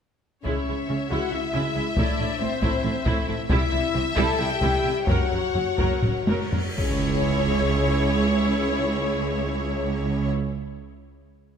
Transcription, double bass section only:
0.45 C#2
0.67 C#2
0.88 C#2
1.11 C#2
1.33 C#2
1.53 C#2
1.76 C#2
1.97 A1
2.19 A1
2.41 A1
2.62 A1
2.83 A1
3.05 A1
3.27 A1
3.50 C2
3.72 C2
3.94 C2
4.17 C2
4.40 C2
4.62 C2
4.85 C2
5.08 F#1
5.32 F#1
5.55 F#1
5.80 F#1
6.04 F#1
6.29 F#1
6.53 F#1
6.78 C#2

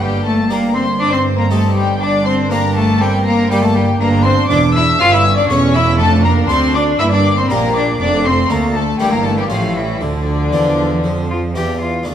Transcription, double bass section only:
0.00 G1
4.00 G1
4.50 E1
5.00 G1
5.50 E1
5.99 F1
6.49 D2
6.99 G1
7.49 A#1
7.99 F1
8.49 D2
8.99 G1
9.50 A1
10.01 D2
10.52 E2
11.04 F2
11.55 E2

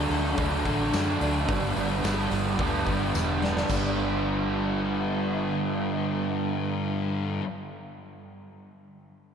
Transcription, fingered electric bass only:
0.10 D2
0.38 D2
0.65 A1
0.94 F#2
1.21 D2
1.49 G1
1.76 G1
2.04 G1
2.31 G1
2.59 D2
2.87 G1
3.15 E1
3.69 G1

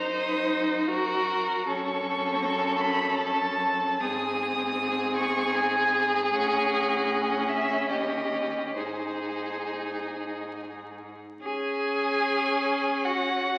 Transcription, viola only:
Already playing: D#4
0.11 D#4
0.88 F#4
1.68 C#4
4.02 C4
6.33 C#4
8.76 D#4
11.43 C#4

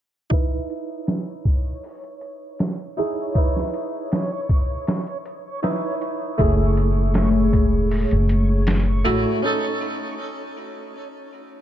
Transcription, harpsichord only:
0.30 D#4 E4 B4
2.97 D#4 E4 G#4
3.35 D#4 E4 B4
5.63 D#4 E4 B4
6.38 A3 E4 G#4
9.05 A3 E4 F#4
9.42 C#4 D#4 A4

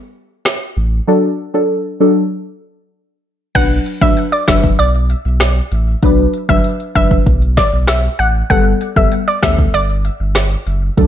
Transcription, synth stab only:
1.07 F#3 D4 A4
1.54 F#3 D4 A4
2.00 F#3 D4 A4
3.55 F#3 D4 B4
4.01 F#3 D4 B4
4.48 F#3 D4 B4
6.02 F#3 D4 B4
6.49 F#3 D4 B4
6.95 F#3 D4 B4
8.50 G3 B3 A4
8.96 G3 B3 A4
9.42 G3 B3 A4
10.97 F#3 D4 A4

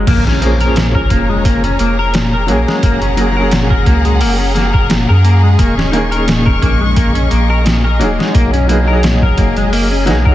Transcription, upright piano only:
0.40 F3 A#3 C#4
0.45 G#4
0.57 F3 A#3
0.63 C#4 G#4
2.46 F#3 A#3 C#4
2.51 G#4
3.16 F#3 A#3 C#4
3.21 G#4
3.32 F#3 A#3
3.38 C#4 G#4
5.92 D#3 A#3 C#4
5.96 G#4
6.08 D#3 A#3
6.14 C#4 G#4
7.99 F#3 D#4
8.03 G#4
8.67 F#3 B3 D#4
8.72 G#4
8.84 F#3
8.89 D#4 G#4
10.06 F#3 B3 D#4
10.10 G#4
10.21 F#3
10.28 D#4 G#4

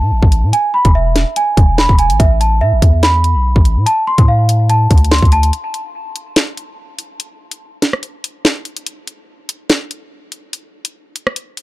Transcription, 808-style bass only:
0.02 A2
0.11 A1
0.23 A1
0.43 A2
0.85 E1
1.57 E1
1.89 E1
2.10 G#1
2.20 A1
2.61 A2
2.72 A1
2.82 E2
3.35 B1
3.56 A1
3.77 A2
4.18 A2
4.91 D2
5.22 D2

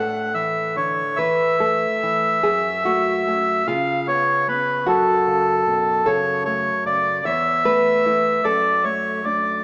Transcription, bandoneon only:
Already playing: F#5
0.34 E5
0.76 C#5
1.16 E5
3.67 F5
4.08 C#5
4.49 B4
4.88 A4
6.06 C#5
6.45 C#5
6.86 D5
7.25 E5
8.44 D5
8.84 C#5
9.24 D5

